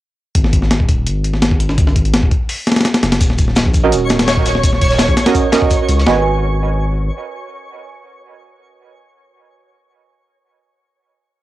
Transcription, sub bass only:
0.35 0.78 G#1 loud
0.80 1.08 D#1 medium
1.07 1.77 G#1 medium
1.78 2.21 G#1 loud
2.23 2.31 D#1 medium
3.03 3.19 F#1 loud
3.21 3.64 D#1 loud
3.66 3.94 A#1 medium
3.92 4.62 D#1 medium
4.64 5.07 D#1 loud
5.09 5.16 A#1 medium
5.89 6.05 C#2 loud
6.07 7.10 G#1 loud

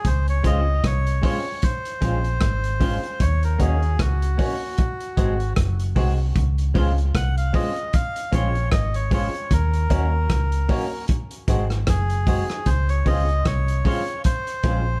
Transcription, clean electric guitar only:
0.43 0.59 G#3 medium
0.43 0.59 C4 medium
0.43 0.60 F4 medium
1.22 1.38 G#3 medium
1.22 1.38 C4 medium
1.22 1.38 F4 medium
2.01 2.17 G#3 medium
2.01 2.17 C4 medium
2.01 2.17 F4 medium
2.80 2.96 G#3 medium
2.80 2.96 C4 medium
2.80 2.96 F4 medium
3.03 muted clean electric guitar stroke medium
3.58 3.74 A#3 medium
3.58 3.75 C#4 medium
3.58 3.75 F#4 medium
4.37 4.53 A#3 medium
4.37 4.54 C#4 medium
4.37 4.54 F#4 medium
5.17 5.32 G#3 medium
5.17 5.33 C4 medium
5.17 5.33 F#4 medium
5.96 6.11 G#3 medium
5.96 6.11 C4 medium
5.96 6.12 F#4 medium
6.18 muted clean electric guitar stroke soft
6.74 6.90 G#3 medium
6.74 6.90 C4 medium
6.74 6.91 F4 loud
7.53 7.69 G#3 medium
7.53 7.69 C4 medium
7.53 7.69 F4 medium
8.32 8.47 G#3 medium
8.32 8.48 C4 medium
8.32 8.48 F4 medium
9.11 9.26 G#3 medium
9.11 9.27 C4 medium
9.11 9.27 F4 medium
9.34 muted clean electric guitar stroke soft
9.90 10.05 A#3 medium
9.90 10.06 C#4 medium
9.90 10.06 F#4 medium
10.69 10.84 A#3 medium
10.69 10.84 C#4 medium
10.69 10.85 F#4 medium
11.48 11.63 G#3 medium
11.48 11.64 C4 medium
11.48 11.64 F#4 medium
11.70 muted clean electric guitar stroke soft
12.27 12.42 G#3 medium
12.27 12.42 C4 medium
12.27 12.43 F#4 medium
12.50 muted clean electric guitar stroke soft
13.05 13.21 G#3 medium
13.05 13.21 C4 medium
13.05 13.22 F4 medium
13.85 14.00 G#3 medium
13.85 14.01 C4 medium
13.85 14.01 F4 medium
14.64 14.79 G#3 medium
14.64 14.79 C4 medium
14.64 14.80 F4 medium

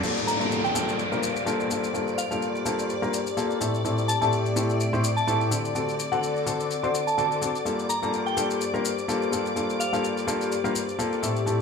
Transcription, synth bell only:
0.27 0.36 A#5 medium
0.41 0.47 A#5 medium
0.64 0.71 G5 medium
0.75 0.83 G5 medium
2.18 2.26 F5 medium
2.31 2.38 F5 medium
4.08 4.17 A5 medium
4.21 4.28 A5 medium
5.17 5.23 A5 medium
5.27 5.36 A5 medium
6.12 6.78 F#5 medium
7.07 7.14 A5 medium
7.18 7.26 A5 medium
7.89 7.98 A#5 medium
8.02 8.09 A#5 medium
8.26 8.33 G5 medium
8.37 8.45 G5 medium
9.80 9.88 F5 medium
9.93 10.00 F5 medium

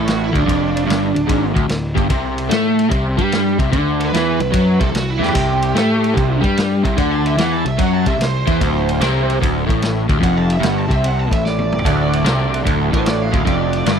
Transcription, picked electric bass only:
0.00 0.31 A1 medium
0.35 0.47 D1 medium
0.48 0.85 F1 medium
0.89 1.14 G1 medium
1.17 1.29 D1 medium
1.29 1.54 G#1 medium
1.56 1.68 D1 medium
1.68 1.94 D1 medium
1.96 2.09 G1 loud
2.10 2.48 C2 medium
2.50 2.88 A2 medium
2.91 3.16 C2 medium
3.19 3.56 G2 medium
3.59 3.71 C2 loud
3.73 4.10 D2 medium
4.14 4.39 E2 medium
4.40 4.53 C2 medium
4.53 4.79 F#2 medium
4.81 4.93 C2 medium
4.94 5.19 C2 medium
5.20 5.33 E2 medium
5.36 5.73 C2 medium
5.75 6.13 A2 medium
6.17 6.42 C2 medium
6.44 6.81 G2 medium
6.85 6.97 C2 loud
6.98 7.35 D2 medium
7.37 7.63 E2 medium
7.65 7.78 C2 medium
7.79 8.04 F#2 medium
8.06 8.17 C2 medium
8.18 8.44 C2 medium
8.48 8.60 E2 loud
8.61 8.98 D1 loud
9.00 9.38 C2 medium
9.42 9.67 D1 medium
9.70 10.07 A1 medium
10.09 10.21 D1 medium
10.22 10.60 F1 medium
10.63 10.88 G1 medium
10.90 11.28 C2 medium
11.32 11.81 A1 medium
11.85 12.22 D1 medium
12.23 12.62 C2 medium
12.66 12.91 D1 medium
12.93 13.31 A1 loud
13.33 13.46 D1 medium
13.46 13.84 F1 medium
13.86 13.99 G1 loud

